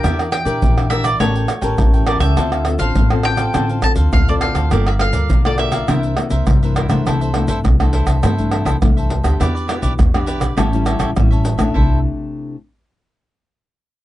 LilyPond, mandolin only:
\new Staff \with { instrumentName = "Mandolin" } { \time 4/4 \key c \mixolydian \tempo 4 = 102 g''8 g''4 e''16 d''16 cis''4. d''16 e''16~ | e''8. f''8. g''4 a''8 f''16 d''16 f''8~ | f''16 e''16 f''8. d''16 e''2 r8 | \key c \major r1 |
r1 | r1 | }